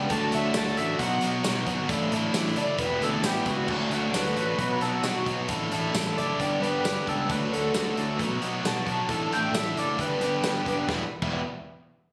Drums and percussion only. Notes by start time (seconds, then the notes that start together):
0.10 kick, closed hi-hat
0.32 closed hi-hat
0.54 snare, closed hi-hat, tambourine
0.67 snare
0.77 closed hi-hat
0.99 kick, closed hi-hat
1.21 closed hi-hat
1.44 snare, closed hi-hat, tambourine
1.67 kick, closed hi-hat
1.89 kick, closed hi-hat
2.12 closed hi-hat
2.34 snare, closed hi-hat, tambourine
2.46 snare
2.56 closed hi-hat
2.78 kick, closed hi-hat
3.02 closed hi-hat
3.24 snare, closed hi-hat, tambourine
3.45 kick, closed hi-hat
3.68 kick, crash
3.91 closed hi-hat
4.14 snare, closed hi-hat, tambourine
4.26 snare
4.36 closed hi-hat
4.59 kick, closed hi-hat
4.81 closed hi-hat
5.03 snare, closed hi-hat, tambourine
5.26 kick, closed hi-hat
5.48 kick, closed hi-hat
5.71 closed hi-hat
5.95 snare, closed hi-hat, tambourine
6.18 closed hi-hat
6.40 kick, closed hi-hat
6.63 closed hi-hat
6.85 snare, closed hi-hat, tambourine
7.07 kick, closed hi-hat
7.30 kick, closed hi-hat
7.53 closed hi-hat
7.74 snare, closed hi-hat, tambourine
7.97 closed hi-hat
8.19 kick, closed hi-hat
8.42 closed hi-hat
8.65 snare, closed hi-hat, tambourine
8.87 kick, closed hi-hat
9.09 kick, closed hi-hat
9.32 closed hi-hat
9.55 snare, closed hi-hat, tambourine
9.77 closed hi-hat
9.99 kick, closed hi-hat
10.21 closed hi-hat
10.44 snare, closed hi-hat, tambourine
10.66 kick, closed hi-hat
10.89 kick, snare
11.22 kick, crash